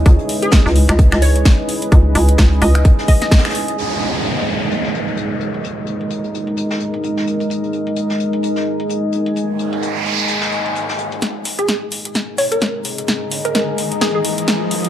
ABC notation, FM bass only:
X:1
M:4/4
L:1/16
Q:"Swing 16ths" 1/4=129
K:G#m
V:1 name="FM bass" clef=bass
C,, z4 C,,2 C,,2 C,,3 z4 | C,,2 C,,2 C,,2 C,,2 z8 | z16 | z16 |
z16 | z16 | z16 | z16 |]